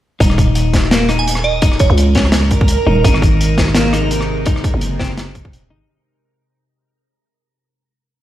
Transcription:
0.20 808-style bass D#1, clean electric guitar D#4, synth texture A#4, kick, closed hi-hat
0.30 cross-stick
0.38 kick, closed hi-hat
0.55 closed hi-hat
0.73 kick, snare, closed hi-hat
0.84 cross-stick
0.91 clean electric guitar A#3, snare, closed hi-hat
1.09 clean electric guitar D#4, cross-stick, closed hi-hat
1.19 synth bell G#5
1.27 closed hi-hat
1.35 cross-stick
1.44 synth bell D#5
1.62 clean electric guitar D#4, kick, closed hi-hat
1.72 cross-stick
1.79 synth bell C#5, kick, closed hi-hat
1.90 808-style bass C#2, synth bell C#5
1.98 closed hi-hat
2.15 clean electric guitar C#4, kick, snare, closed hi-hat
2.25 cross-stick
2.32 snare, closed hi-hat
2.51 kick, closed hi-hat
2.61 kick
2.68 closed hi-hat
2.87 808-style bass D#1, clean electric guitar D#4
3.04 808-style bass G#1, synth drone C3 G#3 D#4, clean electric guitar D#4, kick, closed hi-hat
3.14 cross-stick
3.22 kick, closed hi-hat
3.41 closed hi-hat
3.58 kick, snare, closed hi-hat
3.68 cross-stick
3.75 clean electric guitar A#3, snare, closed hi-hat
3.93 clean electric guitar D#4, cross-stick, closed hi-hat
4.11 closed hi-hat
4.21 cross-stick
4.46 clean electric guitar D#4, kick, closed hi-hat
4.56 cross-stick
4.64 kick, closed hi-hat
4.74 808-style bass F#1
4.81 closed hi-hat
4.99 clean electric guitar C4, kick, snare
5.04 closed hi-hat
5.18 snare, closed hi-hat
5.35 kick, closed hi-hat
5.45 kick
5.53 808-style bass D#1, closed hi-hat
5.70 808-style bass G#1, clean electric guitar D#4

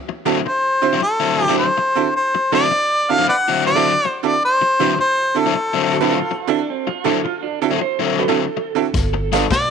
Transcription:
0.09 muted overdriven electric guitar stroke
0.25 honky-tonk piano D3 C4 E4 F#4 A4, overdriven electric guitar D3 F#3 C4 E4
0.46 harmonica C5, muted overdriven electric guitar stroke
0.82 honky-tonk piano D3 C4 E4 F#4 C5
0.93 overdriven electric guitar D3 F#3 C4 E4
1.02 harmonica A4, muted overdriven electric guitar stroke
1.20 overdriven electric guitar D3 F#3 C4 E4
1.39 honky-tonk piano F#4 A4
1.44 harmonica G4
1.48 overdriven electric guitar D3 F#3 C4 E4, honky-tonk piano D3 C4 E4 F#4 A4
1.58 harmonica C5
1.78 muted overdriven electric guitar stroke
1.95 honky-tonk piano D3 C4 E4 F#4 A4
2.16 harmonica C5
2.35 muted overdriven electric guitar stroke
2.52 honky-tonk piano D3 C4 E4 F#4 A4, overdriven electric guitar D3 F#3 C4 E4, harmonica D5
2.71 muted overdriven electric guitar stroke
3.09 honky-tonk piano D3 C4 E4 F#4 A4, harmonica F5
3.19 overdriven electric guitar D3 F#3 C4 E4
3.29 harmonica B4 D5 F#5, muted overdriven electric guitar stroke
3.48 overdriven electric guitar D3 F#3 C4 E4
3.66 honky-tonk piano F#4 B4, harmonica D5
3.75 honky-tonk piano D3 C4 E4 F#4 A4, overdriven electric guitar D3 F#3 C4 E4
4.05 harmonica C5, muted overdriven electric guitar stroke
4.23 honky-tonk piano D3 C4 E4 F#4 A4, harmonica D5
4.45 harmonica C5
4.61 muted overdriven electric guitar stroke
4.79 honky-tonk piano D3 C4 E4 F#4 B4, overdriven electric guitar D3 F#3 C4 E4
4.99 harmonica C5, muted overdriven electric guitar stroke
5.35 honky-tonk piano D3 C4 E4 F#4 A4
5.39 harmonica A4
5.46 overdriven electric guitar D3 F#3 C4 E4
5.55 muted overdriven electric guitar stroke
5.74 overdriven electric guitar D3 F#3 C4 E4
5.93 honky-tonk piano F#4 A4
6.00 honky-tonk piano D3 C4 E4 F#4 B4, overdriven electric guitar D3 F#3 C4 E4
6.12 electric slide guitar F4
6.31 muted overdriven electric guitar stroke
6.47 honky-tonk piano D3 C4 E4 F#4 A4, electric slide guitar D4
6.70 electric slide guitar C4
6.87 electric slide guitar F4, muted overdriven electric guitar stroke
7.04 honky-tonk piano D3 C4 E4 F#4 A4, overdriven electric guitar D3 F#3 C4 E4, electric slide guitar A4
7.24 electric slide guitar F4, muted overdriven electric guitar stroke
7.43 electric slide guitar D4
7.62 honky-tonk piano D3 C4 E4 F#4 A4, electric slide guitar A4
7.71 overdriven electric guitar D3 F#3 C4 E4
7.80 electric slide guitar C5, muted overdriven electric guitar stroke
7.99 overdriven electric guitar D3 F#3 C4 E4, electric slide guitar A4
8.19 honky-tonk piano F#4 B4, electric slide guitar A4
8.28 honky-tonk piano D3 C4 E4 F#4 A4, overdriven electric guitar D3 F#3 C4 E4
8.57 muted overdriven electric guitar stroke
8.75 honky-tonk piano D3 C4 E4 F#4 A4
8.94 upright bass G1, kick, snare, closed hi-hat
9.14 muted overdriven electric guitar stroke
9.32 overdriven electric guitar G3 B3 F4 A4, honky-tonk piano B3 D4 F4 A4, snare, closed hi-hat
9.50 upright bass B1, harmonica D5, muted overdriven electric guitar stroke, kick, snare, closed hi-hat

